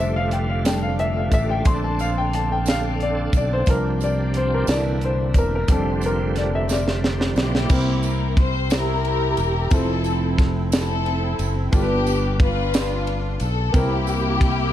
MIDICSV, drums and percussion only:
0, 0, Header, 1, 2, 480
1, 0, Start_track
1, 0, Key_signature, -1, "major"
1, 0, Tempo, 671141
1, 1185, Time_signature, 6, 3, 24, 8
1, 10532, End_track
2, 0, Start_track
2, 0, Title_t, "Drums"
2, 224, Note_on_c, 9, 42, 74
2, 296, Note_off_c, 9, 42, 0
2, 467, Note_on_c, 9, 42, 87
2, 467, Note_on_c, 9, 54, 81
2, 474, Note_on_c, 9, 38, 92
2, 538, Note_off_c, 9, 42, 0
2, 538, Note_off_c, 9, 54, 0
2, 546, Note_off_c, 9, 38, 0
2, 708, Note_on_c, 9, 42, 51
2, 780, Note_off_c, 9, 42, 0
2, 941, Note_on_c, 9, 36, 81
2, 941, Note_on_c, 9, 42, 57
2, 944, Note_on_c, 9, 54, 51
2, 1013, Note_off_c, 9, 36, 0
2, 1013, Note_off_c, 9, 42, 0
2, 1016, Note_off_c, 9, 54, 0
2, 1179, Note_on_c, 9, 54, 53
2, 1183, Note_on_c, 9, 42, 81
2, 1184, Note_on_c, 9, 36, 115
2, 1251, Note_off_c, 9, 54, 0
2, 1254, Note_off_c, 9, 42, 0
2, 1255, Note_off_c, 9, 36, 0
2, 1424, Note_on_c, 9, 54, 53
2, 1430, Note_on_c, 9, 42, 52
2, 1496, Note_off_c, 9, 54, 0
2, 1502, Note_off_c, 9, 42, 0
2, 1670, Note_on_c, 9, 42, 72
2, 1741, Note_off_c, 9, 42, 0
2, 1901, Note_on_c, 9, 54, 81
2, 1912, Note_on_c, 9, 42, 84
2, 1920, Note_on_c, 9, 38, 91
2, 1972, Note_off_c, 9, 54, 0
2, 1984, Note_off_c, 9, 42, 0
2, 1991, Note_off_c, 9, 38, 0
2, 2149, Note_on_c, 9, 42, 51
2, 2220, Note_off_c, 9, 42, 0
2, 2380, Note_on_c, 9, 54, 52
2, 2381, Note_on_c, 9, 42, 66
2, 2382, Note_on_c, 9, 36, 93
2, 2452, Note_off_c, 9, 42, 0
2, 2452, Note_off_c, 9, 54, 0
2, 2453, Note_off_c, 9, 36, 0
2, 2618, Note_on_c, 9, 54, 55
2, 2626, Note_on_c, 9, 36, 102
2, 2627, Note_on_c, 9, 42, 83
2, 2689, Note_off_c, 9, 54, 0
2, 2697, Note_off_c, 9, 36, 0
2, 2698, Note_off_c, 9, 42, 0
2, 2865, Note_on_c, 9, 54, 56
2, 2872, Note_on_c, 9, 42, 46
2, 2936, Note_off_c, 9, 54, 0
2, 2944, Note_off_c, 9, 42, 0
2, 3104, Note_on_c, 9, 42, 71
2, 3175, Note_off_c, 9, 42, 0
2, 3342, Note_on_c, 9, 54, 82
2, 3347, Note_on_c, 9, 42, 84
2, 3355, Note_on_c, 9, 38, 107
2, 3413, Note_off_c, 9, 54, 0
2, 3419, Note_off_c, 9, 42, 0
2, 3426, Note_off_c, 9, 38, 0
2, 3586, Note_on_c, 9, 42, 58
2, 3658, Note_off_c, 9, 42, 0
2, 3821, Note_on_c, 9, 54, 54
2, 3822, Note_on_c, 9, 36, 93
2, 3822, Note_on_c, 9, 42, 67
2, 3893, Note_off_c, 9, 36, 0
2, 3893, Note_off_c, 9, 54, 0
2, 3894, Note_off_c, 9, 42, 0
2, 4061, Note_on_c, 9, 54, 60
2, 4065, Note_on_c, 9, 36, 113
2, 4065, Note_on_c, 9, 42, 98
2, 4132, Note_off_c, 9, 54, 0
2, 4136, Note_off_c, 9, 42, 0
2, 4137, Note_off_c, 9, 36, 0
2, 4301, Note_on_c, 9, 54, 56
2, 4311, Note_on_c, 9, 42, 52
2, 4373, Note_off_c, 9, 54, 0
2, 4383, Note_off_c, 9, 42, 0
2, 4546, Note_on_c, 9, 42, 71
2, 4556, Note_on_c, 9, 38, 35
2, 4618, Note_off_c, 9, 42, 0
2, 4627, Note_off_c, 9, 38, 0
2, 4786, Note_on_c, 9, 54, 86
2, 4799, Note_on_c, 9, 38, 56
2, 4857, Note_off_c, 9, 54, 0
2, 4870, Note_off_c, 9, 38, 0
2, 4918, Note_on_c, 9, 38, 62
2, 4989, Note_off_c, 9, 38, 0
2, 5036, Note_on_c, 9, 38, 75
2, 5108, Note_off_c, 9, 38, 0
2, 5156, Note_on_c, 9, 38, 71
2, 5228, Note_off_c, 9, 38, 0
2, 5263, Note_on_c, 9, 54, 51
2, 5275, Note_on_c, 9, 38, 89
2, 5335, Note_off_c, 9, 54, 0
2, 5347, Note_off_c, 9, 38, 0
2, 5399, Note_on_c, 9, 38, 78
2, 5470, Note_off_c, 9, 38, 0
2, 5503, Note_on_c, 9, 49, 109
2, 5503, Note_on_c, 9, 54, 58
2, 5506, Note_on_c, 9, 36, 124
2, 5574, Note_off_c, 9, 54, 0
2, 5575, Note_off_c, 9, 49, 0
2, 5578, Note_off_c, 9, 36, 0
2, 5740, Note_on_c, 9, 54, 60
2, 5747, Note_on_c, 9, 51, 40
2, 5812, Note_off_c, 9, 54, 0
2, 5819, Note_off_c, 9, 51, 0
2, 5985, Note_on_c, 9, 36, 100
2, 5986, Note_on_c, 9, 51, 61
2, 6057, Note_off_c, 9, 36, 0
2, 6058, Note_off_c, 9, 51, 0
2, 6223, Note_on_c, 9, 54, 89
2, 6229, Note_on_c, 9, 51, 86
2, 6236, Note_on_c, 9, 38, 102
2, 6295, Note_off_c, 9, 54, 0
2, 6300, Note_off_c, 9, 51, 0
2, 6308, Note_off_c, 9, 38, 0
2, 6470, Note_on_c, 9, 51, 46
2, 6542, Note_off_c, 9, 51, 0
2, 6702, Note_on_c, 9, 51, 56
2, 6703, Note_on_c, 9, 54, 49
2, 6773, Note_off_c, 9, 51, 0
2, 6774, Note_off_c, 9, 54, 0
2, 6942, Note_on_c, 9, 54, 59
2, 6946, Note_on_c, 9, 51, 77
2, 6947, Note_on_c, 9, 36, 120
2, 7013, Note_off_c, 9, 54, 0
2, 7017, Note_off_c, 9, 51, 0
2, 7019, Note_off_c, 9, 36, 0
2, 7182, Note_on_c, 9, 54, 61
2, 7191, Note_on_c, 9, 51, 45
2, 7253, Note_off_c, 9, 54, 0
2, 7263, Note_off_c, 9, 51, 0
2, 7427, Note_on_c, 9, 36, 100
2, 7432, Note_on_c, 9, 51, 59
2, 7441, Note_on_c, 9, 38, 38
2, 7498, Note_off_c, 9, 36, 0
2, 7503, Note_off_c, 9, 51, 0
2, 7513, Note_off_c, 9, 38, 0
2, 7668, Note_on_c, 9, 54, 97
2, 7670, Note_on_c, 9, 51, 74
2, 7677, Note_on_c, 9, 38, 112
2, 7739, Note_off_c, 9, 54, 0
2, 7741, Note_off_c, 9, 51, 0
2, 7749, Note_off_c, 9, 38, 0
2, 7910, Note_on_c, 9, 51, 47
2, 7982, Note_off_c, 9, 51, 0
2, 8146, Note_on_c, 9, 51, 60
2, 8148, Note_on_c, 9, 54, 52
2, 8217, Note_off_c, 9, 51, 0
2, 8220, Note_off_c, 9, 54, 0
2, 8386, Note_on_c, 9, 51, 72
2, 8388, Note_on_c, 9, 36, 127
2, 8392, Note_on_c, 9, 54, 57
2, 8457, Note_off_c, 9, 51, 0
2, 8459, Note_off_c, 9, 36, 0
2, 8464, Note_off_c, 9, 54, 0
2, 8630, Note_on_c, 9, 54, 59
2, 8631, Note_on_c, 9, 51, 49
2, 8701, Note_off_c, 9, 54, 0
2, 8703, Note_off_c, 9, 51, 0
2, 8866, Note_on_c, 9, 36, 108
2, 8868, Note_on_c, 9, 51, 65
2, 8938, Note_off_c, 9, 36, 0
2, 8939, Note_off_c, 9, 51, 0
2, 9110, Note_on_c, 9, 54, 100
2, 9111, Note_on_c, 9, 51, 77
2, 9118, Note_on_c, 9, 38, 114
2, 9181, Note_off_c, 9, 54, 0
2, 9182, Note_off_c, 9, 51, 0
2, 9190, Note_off_c, 9, 38, 0
2, 9349, Note_on_c, 9, 51, 52
2, 9420, Note_off_c, 9, 51, 0
2, 9581, Note_on_c, 9, 51, 59
2, 9587, Note_on_c, 9, 54, 53
2, 9653, Note_off_c, 9, 51, 0
2, 9659, Note_off_c, 9, 54, 0
2, 9826, Note_on_c, 9, 51, 74
2, 9827, Note_on_c, 9, 36, 127
2, 9829, Note_on_c, 9, 54, 52
2, 9897, Note_off_c, 9, 51, 0
2, 9898, Note_off_c, 9, 36, 0
2, 9900, Note_off_c, 9, 54, 0
2, 10062, Note_on_c, 9, 54, 63
2, 10075, Note_on_c, 9, 51, 46
2, 10134, Note_off_c, 9, 54, 0
2, 10146, Note_off_c, 9, 51, 0
2, 10305, Note_on_c, 9, 36, 98
2, 10309, Note_on_c, 9, 51, 72
2, 10377, Note_off_c, 9, 36, 0
2, 10380, Note_off_c, 9, 51, 0
2, 10532, End_track
0, 0, End_of_file